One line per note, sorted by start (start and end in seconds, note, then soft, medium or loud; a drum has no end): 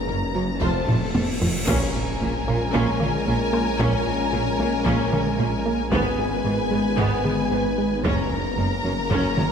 0.00 0.63 F#1 medium
0.00 0.62 A#3 medium
0.00 0.60 C#4 medium
0.00 0.59 A#5 medium
0.00 cymbal swell medium
0.08 0.16 F#1 medium
0.08 0.17 F#2 medium
0.08 0.24 F#2 medium
0.08 0.16 C#4 medium
0.08 0.16 A#4 medium
0.34 0.42 F#1 medium
0.34 0.43 F#2 medium
0.34 0.51 F#3 medium
0.34 0.43 C#4 medium
0.34 0.43 A#4 medium
0.60 0.69 F1 medium
0.60 1.67 F1 medium
0.60 0.77 F2 medium
0.60 0.70 F2 medium
0.60 1.41 A3 medium
0.60 1.41 C4 medium
0.60 0.85 F4 medium
0.60 0.86 C5 medium
0.60 1.47 A5 medium
0.60 taiko medium
0.87 0.96 F1 soft
0.87 0.97 F2 medium
0.87 1.04 F3 medium
0.87 0.95 F4 medium
0.87 0.95 C5 medium
0.87 taiko low-mid medium
1.13 1.22 F1 medium
1.13 1.30 F2 medium
1.13 1.23 F2 medium
1.13 1.22 F4 soft
1.13 1.21 C5 medium
1.13 taiko high medium
1.42 1.57 F3 medium
1.42 taiko low loud
1.67 1.75 A#1 loud
1.67 5.94 A#1 medium
1.67 1.76 A#2 loud
1.67 1.84 A#2 loud
1.67 5.89 G#3 medium
1.67 8.01 G#3 medium
1.67 1.92 C#4 loud
1.67 5.89 C#4 medium
1.67 5.89 F4 medium
1.67 5.88 A#4 medium
1.67 5.89 A#4 medium
1.67 5.88 G#5 medium
1.67 taiko loud
1.67 impact medium
1.95 2.11 A#2 medium
2.21 2.29 A#1 medium
2.21 2.29 A#2 medium
2.21 2.37 A#2 medium
2.21 2.29 C#4 medium
2.47 2.55 A#1 medium
2.47 2.56 A#2 medium
2.47 2.64 A#3 medium
2.47 2.56 C#4 medium
2.74 2.82 A#1 loud
2.74 2.82 A#2 loud
2.74 2.90 A#2 loud
2.74 2.98 C#4 medium
2.74 taiko medium
3.00 3.09 A#1 medium
3.00 3.08 A#2 medium
3.00 3.16 A#3 medium
3.00 3.09 C#4 medium
3.00 taiko mid medium
3.26 3.35 A#1 medium
3.26 3.42 A#2 medium
3.26 3.35 A#2 medium
3.26 3.35 C#4 medium
3.53 3.69 A#3 medium
3.53 taiko rim soft
3.80 3.88 A#1 medium
3.80 3.96 A#2 loud
3.80 3.88 A#2 loud
3.80 4.05 C#4 loud
3.80 taiko loud
4.06 4.22 A#2 medium
4.33 4.41 A#1 medium
4.33 4.41 A#2 medium
4.33 4.49 A#2 medium
4.33 4.41 C#4 medium
4.59 4.67 A#1 medium
4.59 4.68 A#2 medium
4.59 4.76 A#3 medium
4.59 4.68 C#4 medium
4.85 4.93 A#1 medium
4.85 4.93 A#2 loud
4.85 5.02 A#2 loud
4.85 5.10 C#4 loud
4.85 taiko medium
5.12 5.20 A#1 medium
5.12 5.20 A#2 medium
5.12 5.29 A#3 medium
5.12 5.21 C#4 medium
5.12 taiko mid medium
5.38 5.46 A#1 medium
5.38 5.47 A#2 medium
5.38 5.55 A#2 medium
5.38 5.48 C#4 medium
5.66 5.82 A#3 medium
5.91 5.99 G#1 medium
5.91 8.06 G#1 medium
5.91 6.00 G#2 medium
5.91 6.08 G#2 loud
5.91 8.01 G#3 medium
5.91 6.17 B3 loud
5.91 8.05 B3 medium
5.91 8.05 D#4 medium
5.91 8.00 B4 medium
5.91 8.05 B4 medium
5.91 8.00 G#5 medium
5.91 taiko loud
6.18 6.34 G#2 medium
6.45 6.53 G#1 medium
6.45 6.61 G#2 medium
6.45 6.53 G#2 medium
6.45 6.54 B3 medium
6.71 6.79 G#1 medium
6.71 6.79 G#2 medium
6.71 6.87 G#3 medium
6.71 6.80 B3 medium
6.98 7.06 G#1 medium
6.98 7.14 G#2 loud
6.98 7.06 G#2 medium
6.98 7.23 B3 loud
6.98 taiko medium
7.24 7.33 G#1 medium
7.24 7.33 G#2 medium
7.24 7.41 G#3 medium
7.24 7.33 B3 medium
7.24 taiko mid medium
7.51 7.59 G#1 medium
7.51 7.67 G#2 medium
7.51 7.59 G#2 medium
7.51 7.59 B3 medium
7.78 7.94 G#3 medium
8.04 9.52 F#1 medium
8.04 8.13 F#1 medium
8.04 8.12 F#2 loud
8.04 8.20 F#2 loud
8.04 9.52 F#3 medium
8.04 9.52 A#3 medium
8.04 9.52 C#4 medium
8.04 8.30 C#4 loud
8.04 9.52 F#4 medium
8.04 9.52 A#4 medium
8.04 9.52 A#5 medium
8.04 taiko loud
8.31 8.47 F#2 medium
8.57 8.65 F#1 medium
8.57 8.73 F#2 medium
8.57 8.65 F#2 medium
8.57 8.66 C#4 medium
8.84 8.92 F#1 medium
8.84 8.92 F#2 medium
8.84 9.00 F#3 medium
8.84 8.93 C#4 medium
9.10 9.18 F#1 medium
9.10 9.18 F#2 loud
9.10 9.27 F#2 loud
9.10 9.36 C#4 medium
9.10 taiko medium
9.37 9.45 F#1 medium
9.37 9.45 F#2 medium
9.37 9.52 F#3 medium
9.37 9.45 C#4 medium
9.37 taiko mid medium